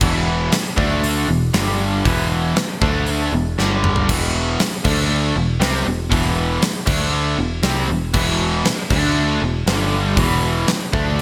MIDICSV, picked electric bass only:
0, 0, Header, 1, 3, 480
1, 0, Start_track
1, 0, Key_signature, 1, "minor"
1, 0, Tempo, 508044
1, 12, Time_signature, 4, 2, 24, 8
1, 10598, End_track
2, 0, Start_track
2, 0, Title_t, "Picked electric bass"
2, 0, Program_c, 0, 34
2, 12, Note_on_c, 0, 28, 104
2, 459, Note_off_c, 0, 28, 0
2, 731, Note_on_c, 0, 38, 98
2, 1179, Note_off_c, 0, 38, 0
2, 1214, Note_on_c, 0, 28, 81
2, 1437, Note_off_c, 0, 28, 0
2, 1454, Note_on_c, 0, 31, 99
2, 1900, Note_off_c, 0, 31, 0
2, 1941, Note_on_c, 0, 28, 98
2, 2384, Note_off_c, 0, 28, 0
2, 2664, Note_on_c, 0, 38, 94
2, 3105, Note_off_c, 0, 38, 0
2, 3141, Note_on_c, 0, 28, 90
2, 3361, Note_off_c, 0, 28, 0
2, 3387, Note_on_c, 0, 31, 93
2, 3827, Note_off_c, 0, 31, 0
2, 3864, Note_on_c, 0, 28, 107
2, 4305, Note_off_c, 0, 28, 0
2, 4582, Note_on_c, 0, 38, 97
2, 5024, Note_off_c, 0, 38, 0
2, 5065, Note_on_c, 0, 28, 86
2, 5282, Note_off_c, 0, 28, 0
2, 5292, Note_on_c, 0, 36, 100
2, 5516, Note_off_c, 0, 36, 0
2, 5533, Note_on_c, 0, 28, 88
2, 5756, Note_off_c, 0, 28, 0
2, 5785, Note_on_c, 0, 28, 109
2, 6226, Note_off_c, 0, 28, 0
2, 6493, Note_on_c, 0, 38, 92
2, 6939, Note_off_c, 0, 38, 0
2, 6976, Note_on_c, 0, 28, 81
2, 7198, Note_off_c, 0, 28, 0
2, 7217, Note_on_c, 0, 36, 90
2, 7438, Note_off_c, 0, 36, 0
2, 7466, Note_on_c, 0, 28, 83
2, 7683, Note_off_c, 0, 28, 0
2, 7699, Note_on_c, 0, 28, 98
2, 8143, Note_off_c, 0, 28, 0
2, 8414, Note_on_c, 0, 38, 99
2, 8860, Note_off_c, 0, 38, 0
2, 8898, Note_on_c, 0, 28, 84
2, 9119, Note_off_c, 0, 28, 0
2, 9129, Note_on_c, 0, 31, 98
2, 9578, Note_off_c, 0, 31, 0
2, 9605, Note_on_c, 0, 28, 98
2, 10056, Note_off_c, 0, 28, 0
2, 10331, Note_on_c, 0, 38, 97
2, 10598, Note_off_c, 0, 38, 0
2, 10598, End_track
3, 0, Start_track
3, 0, Title_t, "Muted picked electric bass strokes"
3, 4354, Note_on_c, 9, 29, 43
3, 4448, Note_off_c, 9, 29, 0
3, 10598, End_track
0, 0, End_of_file